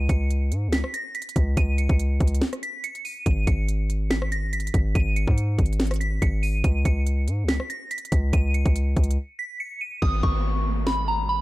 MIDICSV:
0, 0, Header, 1, 5, 480
1, 0, Start_track
1, 0, Key_signature, 5, "minor"
1, 0, Tempo, 422535
1, 1786, Time_signature, 4, 2, 24, 8
1, 12967, End_track
2, 0, Start_track
2, 0, Title_t, "Synth bell"
2, 0, Program_c, 0, 98
2, 105, Note_on_c, 0, 97, 70
2, 782, Note_off_c, 0, 97, 0
2, 824, Note_on_c, 0, 95, 79
2, 1034, Note_off_c, 0, 95, 0
2, 1066, Note_on_c, 0, 94, 78
2, 1274, Note_off_c, 0, 94, 0
2, 1305, Note_on_c, 0, 95, 75
2, 1756, Note_off_c, 0, 95, 0
2, 1787, Note_on_c, 0, 99, 113
2, 1995, Note_off_c, 0, 99, 0
2, 2024, Note_on_c, 0, 97, 84
2, 2939, Note_off_c, 0, 97, 0
2, 2985, Note_on_c, 0, 95, 85
2, 3194, Note_off_c, 0, 95, 0
2, 3225, Note_on_c, 0, 97, 90
2, 3434, Note_off_c, 0, 97, 0
2, 3465, Note_on_c, 0, 99, 78
2, 3674, Note_off_c, 0, 99, 0
2, 3702, Note_on_c, 0, 99, 107
2, 3912, Note_off_c, 0, 99, 0
2, 3943, Note_on_c, 0, 97, 72
2, 4621, Note_off_c, 0, 97, 0
2, 4664, Note_on_c, 0, 95, 86
2, 4873, Note_off_c, 0, 95, 0
2, 4906, Note_on_c, 0, 94, 79
2, 5115, Note_off_c, 0, 94, 0
2, 5146, Note_on_c, 0, 95, 86
2, 5597, Note_off_c, 0, 95, 0
2, 5626, Note_on_c, 0, 99, 110
2, 5834, Note_off_c, 0, 99, 0
2, 5865, Note_on_c, 0, 97, 82
2, 6780, Note_off_c, 0, 97, 0
2, 6822, Note_on_c, 0, 95, 82
2, 7032, Note_off_c, 0, 95, 0
2, 7066, Note_on_c, 0, 97, 87
2, 7275, Note_off_c, 0, 97, 0
2, 7301, Note_on_c, 0, 99, 86
2, 7512, Note_off_c, 0, 99, 0
2, 7543, Note_on_c, 0, 99, 102
2, 7753, Note_off_c, 0, 99, 0
2, 7784, Note_on_c, 0, 97, 74
2, 8462, Note_off_c, 0, 97, 0
2, 8505, Note_on_c, 0, 95, 78
2, 8714, Note_off_c, 0, 95, 0
2, 8745, Note_on_c, 0, 94, 76
2, 8954, Note_off_c, 0, 94, 0
2, 8985, Note_on_c, 0, 95, 76
2, 9436, Note_off_c, 0, 95, 0
2, 9467, Note_on_c, 0, 99, 118
2, 9675, Note_off_c, 0, 99, 0
2, 9704, Note_on_c, 0, 97, 84
2, 10619, Note_off_c, 0, 97, 0
2, 10666, Note_on_c, 0, 95, 84
2, 10874, Note_off_c, 0, 95, 0
2, 10906, Note_on_c, 0, 97, 93
2, 11114, Note_off_c, 0, 97, 0
2, 11145, Note_on_c, 0, 99, 79
2, 11354, Note_off_c, 0, 99, 0
2, 11382, Note_on_c, 0, 87, 98
2, 11592, Note_off_c, 0, 87, 0
2, 11622, Note_on_c, 0, 85, 69
2, 12301, Note_off_c, 0, 85, 0
2, 12344, Note_on_c, 0, 83, 84
2, 12553, Note_off_c, 0, 83, 0
2, 12587, Note_on_c, 0, 82, 78
2, 12795, Note_off_c, 0, 82, 0
2, 12826, Note_on_c, 0, 83, 83
2, 12967, Note_off_c, 0, 83, 0
2, 12967, End_track
3, 0, Start_track
3, 0, Title_t, "808-style bass"
3, 0, Program_c, 1, 38
3, 104, Note_on_c, 1, 37, 108
3, 585, Note_on_c, 1, 44, 97
3, 602, Note_off_c, 1, 37, 0
3, 769, Note_on_c, 1, 37, 100
3, 786, Note_off_c, 1, 44, 0
3, 943, Note_off_c, 1, 37, 0
3, 1544, Note_on_c, 1, 37, 105
3, 1775, Note_off_c, 1, 37, 0
3, 1785, Note_on_c, 1, 37, 113
3, 2137, Note_off_c, 1, 37, 0
3, 2152, Note_on_c, 1, 37, 106
3, 2491, Note_off_c, 1, 37, 0
3, 2504, Note_on_c, 1, 37, 110
3, 2745, Note_off_c, 1, 37, 0
3, 3705, Note_on_c, 1, 32, 113
3, 3935, Note_off_c, 1, 32, 0
3, 3945, Note_on_c, 1, 32, 107
3, 5339, Note_off_c, 1, 32, 0
3, 5385, Note_on_c, 1, 32, 105
3, 5616, Note_off_c, 1, 32, 0
3, 5625, Note_on_c, 1, 32, 118
3, 5978, Note_off_c, 1, 32, 0
3, 5993, Note_on_c, 1, 44, 100
3, 6331, Note_off_c, 1, 44, 0
3, 6344, Note_on_c, 1, 32, 104
3, 7036, Note_off_c, 1, 32, 0
3, 7065, Note_on_c, 1, 32, 107
3, 7526, Note_off_c, 1, 32, 0
3, 7544, Note_on_c, 1, 37, 117
3, 7775, Note_off_c, 1, 37, 0
3, 7784, Note_on_c, 1, 37, 107
3, 8264, Note_on_c, 1, 44, 99
3, 8281, Note_off_c, 1, 37, 0
3, 8448, Note_on_c, 1, 37, 99
3, 8465, Note_off_c, 1, 44, 0
3, 8623, Note_off_c, 1, 37, 0
3, 9225, Note_on_c, 1, 37, 107
3, 9456, Note_off_c, 1, 37, 0
3, 9465, Note_on_c, 1, 37, 115
3, 9818, Note_off_c, 1, 37, 0
3, 9833, Note_on_c, 1, 37, 105
3, 10171, Note_off_c, 1, 37, 0
3, 10185, Note_on_c, 1, 37, 111
3, 10425, Note_off_c, 1, 37, 0
3, 11385, Note_on_c, 1, 32, 111
3, 11616, Note_off_c, 1, 32, 0
3, 11625, Note_on_c, 1, 32, 103
3, 12967, Note_off_c, 1, 32, 0
3, 12967, End_track
4, 0, Start_track
4, 0, Title_t, "Downlifter"
4, 0, Program_c, 2, 103
4, 11385, Note_on_c, 2, 60, 81
4, 12967, Note_off_c, 2, 60, 0
4, 12967, End_track
5, 0, Start_track
5, 0, Title_t, "Drums"
5, 105, Note_on_c, 9, 36, 92
5, 105, Note_on_c, 9, 42, 65
5, 218, Note_off_c, 9, 36, 0
5, 219, Note_off_c, 9, 42, 0
5, 347, Note_on_c, 9, 42, 83
5, 460, Note_off_c, 9, 42, 0
5, 587, Note_on_c, 9, 42, 74
5, 701, Note_off_c, 9, 42, 0
5, 824, Note_on_c, 9, 38, 112
5, 825, Note_on_c, 9, 42, 54
5, 937, Note_off_c, 9, 38, 0
5, 938, Note_off_c, 9, 42, 0
5, 952, Note_on_c, 9, 37, 95
5, 1066, Note_off_c, 9, 37, 0
5, 1066, Note_on_c, 9, 42, 77
5, 1180, Note_off_c, 9, 42, 0
5, 1304, Note_on_c, 9, 42, 69
5, 1384, Note_off_c, 9, 42, 0
5, 1384, Note_on_c, 9, 42, 69
5, 1464, Note_off_c, 9, 42, 0
5, 1464, Note_on_c, 9, 42, 70
5, 1544, Note_off_c, 9, 42, 0
5, 1544, Note_on_c, 9, 36, 99
5, 1544, Note_on_c, 9, 42, 77
5, 1658, Note_off_c, 9, 36, 0
5, 1658, Note_off_c, 9, 42, 0
5, 1784, Note_on_c, 9, 42, 81
5, 1785, Note_on_c, 9, 36, 121
5, 1898, Note_off_c, 9, 36, 0
5, 1898, Note_off_c, 9, 42, 0
5, 2024, Note_on_c, 9, 42, 67
5, 2138, Note_off_c, 9, 42, 0
5, 2151, Note_on_c, 9, 42, 40
5, 2152, Note_on_c, 9, 36, 107
5, 2265, Note_off_c, 9, 42, 0
5, 2266, Note_off_c, 9, 36, 0
5, 2266, Note_on_c, 9, 42, 79
5, 2380, Note_off_c, 9, 42, 0
5, 2504, Note_on_c, 9, 36, 95
5, 2504, Note_on_c, 9, 42, 45
5, 2584, Note_off_c, 9, 42, 0
5, 2584, Note_on_c, 9, 42, 62
5, 2618, Note_off_c, 9, 36, 0
5, 2665, Note_off_c, 9, 42, 0
5, 2665, Note_on_c, 9, 42, 75
5, 2744, Note_on_c, 9, 38, 118
5, 2745, Note_off_c, 9, 42, 0
5, 2745, Note_on_c, 9, 42, 35
5, 2857, Note_off_c, 9, 38, 0
5, 2858, Note_off_c, 9, 42, 0
5, 2871, Note_on_c, 9, 37, 92
5, 2871, Note_on_c, 9, 42, 57
5, 2985, Note_off_c, 9, 37, 0
5, 2985, Note_off_c, 9, 42, 0
5, 2986, Note_on_c, 9, 42, 80
5, 3100, Note_off_c, 9, 42, 0
5, 3224, Note_on_c, 9, 42, 79
5, 3338, Note_off_c, 9, 42, 0
5, 3352, Note_on_c, 9, 42, 49
5, 3464, Note_on_c, 9, 46, 80
5, 3465, Note_off_c, 9, 42, 0
5, 3578, Note_off_c, 9, 46, 0
5, 3704, Note_on_c, 9, 42, 82
5, 3705, Note_on_c, 9, 36, 115
5, 3818, Note_off_c, 9, 36, 0
5, 3818, Note_off_c, 9, 42, 0
5, 3944, Note_on_c, 9, 42, 66
5, 3945, Note_on_c, 9, 36, 90
5, 4058, Note_off_c, 9, 36, 0
5, 4058, Note_off_c, 9, 42, 0
5, 4186, Note_on_c, 9, 42, 80
5, 4300, Note_off_c, 9, 42, 0
5, 4428, Note_on_c, 9, 42, 73
5, 4541, Note_off_c, 9, 42, 0
5, 4664, Note_on_c, 9, 38, 115
5, 4665, Note_on_c, 9, 42, 55
5, 4777, Note_off_c, 9, 38, 0
5, 4778, Note_off_c, 9, 42, 0
5, 4792, Note_on_c, 9, 37, 97
5, 4906, Note_off_c, 9, 37, 0
5, 4907, Note_on_c, 9, 42, 75
5, 5021, Note_off_c, 9, 42, 0
5, 5145, Note_on_c, 9, 42, 67
5, 5226, Note_off_c, 9, 42, 0
5, 5226, Note_on_c, 9, 42, 67
5, 5306, Note_off_c, 9, 42, 0
5, 5306, Note_on_c, 9, 42, 70
5, 5385, Note_on_c, 9, 36, 101
5, 5386, Note_off_c, 9, 42, 0
5, 5386, Note_on_c, 9, 42, 77
5, 5499, Note_off_c, 9, 36, 0
5, 5499, Note_off_c, 9, 42, 0
5, 5625, Note_on_c, 9, 36, 115
5, 5626, Note_on_c, 9, 42, 79
5, 5739, Note_off_c, 9, 36, 0
5, 5739, Note_off_c, 9, 42, 0
5, 5866, Note_on_c, 9, 42, 64
5, 5979, Note_off_c, 9, 42, 0
5, 5993, Note_on_c, 9, 36, 111
5, 6106, Note_off_c, 9, 36, 0
5, 6108, Note_on_c, 9, 42, 81
5, 6221, Note_off_c, 9, 42, 0
5, 6345, Note_on_c, 9, 36, 93
5, 6345, Note_on_c, 9, 42, 45
5, 6426, Note_off_c, 9, 42, 0
5, 6426, Note_on_c, 9, 42, 52
5, 6458, Note_off_c, 9, 36, 0
5, 6506, Note_off_c, 9, 42, 0
5, 6506, Note_on_c, 9, 42, 59
5, 6585, Note_on_c, 9, 38, 117
5, 6586, Note_off_c, 9, 42, 0
5, 6586, Note_on_c, 9, 42, 64
5, 6650, Note_off_c, 9, 42, 0
5, 6650, Note_on_c, 9, 42, 40
5, 6666, Note_off_c, 9, 42, 0
5, 6666, Note_on_c, 9, 42, 69
5, 6698, Note_off_c, 9, 38, 0
5, 6713, Note_off_c, 9, 42, 0
5, 6713, Note_on_c, 9, 37, 97
5, 6713, Note_on_c, 9, 42, 50
5, 6745, Note_off_c, 9, 42, 0
5, 6745, Note_on_c, 9, 42, 74
5, 6769, Note_off_c, 9, 42, 0
5, 6769, Note_on_c, 9, 42, 55
5, 6826, Note_off_c, 9, 37, 0
5, 6828, Note_off_c, 9, 42, 0
5, 6828, Note_on_c, 9, 42, 78
5, 6942, Note_off_c, 9, 42, 0
5, 7065, Note_on_c, 9, 36, 111
5, 7067, Note_on_c, 9, 42, 79
5, 7179, Note_off_c, 9, 36, 0
5, 7180, Note_off_c, 9, 42, 0
5, 7305, Note_on_c, 9, 46, 80
5, 7418, Note_off_c, 9, 46, 0
5, 7544, Note_on_c, 9, 42, 83
5, 7545, Note_on_c, 9, 36, 124
5, 7658, Note_off_c, 9, 36, 0
5, 7658, Note_off_c, 9, 42, 0
5, 7784, Note_on_c, 9, 36, 91
5, 7785, Note_on_c, 9, 42, 66
5, 7898, Note_off_c, 9, 36, 0
5, 7898, Note_off_c, 9, 42, 0
5, 8026, Note_on_c, 9, 42, 80
5, 8140, Note_off_c, 9, 42, 0
5, 8266, Note_on_c, 9, 42, 72
5, 8380, Note_off_c, 9, 42, 0
5, 8503, Note_on_c, 9, 38, 118
5, 8504, Note_on_c, 9, 42, 54
5, 8616, Note_off_c, 9, 38, 0
5, 8617, Note_off_c, 9, 42, 0
5, 8631, Note_on_c, 9, 37, 94
5, 8745, Note_off_c, 9, 37, 0
5, 8747, Note_on_c, 9, 42, 72
5, 8860, Note_off_c, 9, 42, 0
5, 8985, Note_on_c, 9, 42, 68
5, 9065, Note_off_c, 9, 42, 0
5, 9065, Note_on_c, 9, 42, 68
5, 9145, Note_off_c, 9, 42, 0
5, 9145, Note_on_c, 9, 42, 68
5, 9224, Note_off_c, 9, 42, 0
5, 9224, Note_on_c, 9, 42, 80
5, 9225, Note_on_c, 9, 36, 98
5, 9338, Note_off_c, 9, 36, 0
5, 9338, Note_off_c, 9, 42, 0
5, 9465, Note_on_c, 9, 36, 119
5, 9465, Note_on_c, 9, 42, 82
5, 9578, Note_off_c, 9, 42, 0
5, 9579, Note_off_c, 9, 36, 0
5, 9705, Note_on_c, 9, 42, 66
5, 9819, Note_off_c, 9, 42, 0
5, 9833, Note_on_c, 9, 36, 109
5, 9833, Note_on_c, 9, 42, 41
5, 9946, Note_off_c, 9, 36, 0
5, 9946, Note_off_c, 9, 42, 0
5, 9947, Note_on_c, 9, 42, 81
5, 10061, Note_off_c, 9, 42, 0
5, 10185, Note_on_c, 9, 36, 92
5, 10185, Note_on_c, 9, 42, 44
5, 10265, Note_off_c, 9, 42, 0
5, 10265, Note_on_c, 9, 42, 62
5, 10298, Note_off_c, 9, 36, 0
5, 10345, Note_off_c, 9, 42, 0
5, 10345, Note_on_c, 9, 42, 78
5, 10458, Note_off_c, 9, 42, 0
5, 11385, Note_on_c, 9, 36, 114
5, 11499, Note_off_c, 9, 36, 0
5, 11625, Note_on_c, 9, 36, 89
5, 11738, Note_off_c, 9, 36, 0
5, 12344, Note_on_c, 9, 38, 114
5, 12458, Note_off_c, 9, 38, 0
5, 12967, End_track
0, 0, End_of_file